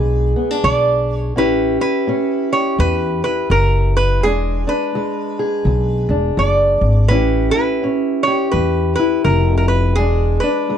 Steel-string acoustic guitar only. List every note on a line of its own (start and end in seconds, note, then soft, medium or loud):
0.00 0.58 E2 medium
0.00 1.36 G#3 medium
0.00 0.36 D4 medium
0.00 1.32 G#4 medium
0.36 0.51 B3 soft
0.51 1.36 D4 soft
0.64 1.30 E2 medium
1.36 2.02 A2 medium
1.36 2.07 C#4 medium
1.36 1.80 E4 medium
1.36 2.51 G4 medium
1.81 3.25 E4 medium
2.07 2.73 A2 medium
2.07 4.20 C#4 medium
2.52 4.20 G4 medium
2.80 3.46 A2 medium
3.25 4.25 E4 medium
3.51 4.17 A2 medium
4.24 4.89 E2 medium
4.24 4.94 G#3 medium
4.24 4.66 D4 medium
4.67 6.09 D4 medium
4.95 5.61 E2 medium
4.95 7.10 G#3 medium
5.39 7.07 G#4 medium
5.67 6.32 E2 medium
6.10 7.06 D4 medium
6.37 7.03 E2 medium
7.09 7.76 A2 medium
7.09 7.82 C#4 medium
7.09 7.55 E4 medium
7.09 8.26 G4 medium
7.55 8.99 E4 medium
7.83 8.48 A2 medium
7.83 9.94 C#4 medium
8.27 9.94 G4 medium
8.55 9.20 A2 medium
8.99 9.99 E4 soft
9.26 9.91 A2 medium
9.98 10.63 E2 medium
9.98 10.70 G#3 medium
9.98 10.43 D4 medium
10.43 10.78 D4 medium
10.69 10.78 E2 medium
10.69 10.78 G#3 medium